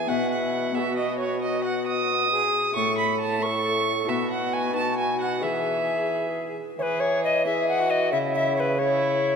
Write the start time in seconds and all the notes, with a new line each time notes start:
Already playing: E3 G#4
0.06 B2 B3 E4 B4 E5 F#5
0.31 F#5
0.71 B3 F#4 B4 E5
0.76 F#4 G#4
0.97 D#5
1.19 C#5
1.42 F#4 D#5
1.64 F#5
1.87 D#6
2.32 G#4
2.72 A2 E4 A4 C#5 C#6
2.76 A2 A4
2.98 B5
3.20 A5
3.38 E4 A4 A#4 C#5 C#6
3.47 A4
4.05 B2 E4 F#4 B4
4.09 E5
4.31 F#5
4.53 G#5
4.71 D#4 F#4 B4
4.75 F#4 A5
4.98 G#5
5.21 F#5
5.39 E3 E4 G#4 B4
5.43 G#4 E5
6.79 E3 G#4 B4 C#5
7.00 C#5
7.24 D#5
7.45 E4 G#4 E5
7.69 F#5
7.79 F#4
7.90 D#5
8.12 C#3 E4 E5
8.35 E5
8.56 B4 C#5
8.79 E4 G#4 C#5